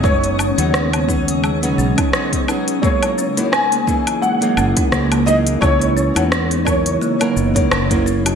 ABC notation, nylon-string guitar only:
X:1
M:4/4
L:1/16
Q:"Swing 16ths" 1/4=86
K:B
V:1 name="Nylon-string guitar"
[F,B,CDG]3 [F,B,CDF] z2 [F,B,CDG]3 [F,B,CDG]3 [F,B,CDG]2 [F,B,CDG]2 | [F,A,DEG]3 [F,A,DEF] z2 [E,F,A,DG]3 [E,F,A,DG]3 [F,A,DEG]2 [E,F,A,DG]2 | [E,B,CDG]3 [E,B,CDF] z2 [E,F,CA]3 [F,A,CEA]2 [F,A,CEA]2 [F,A,CEA]3 |]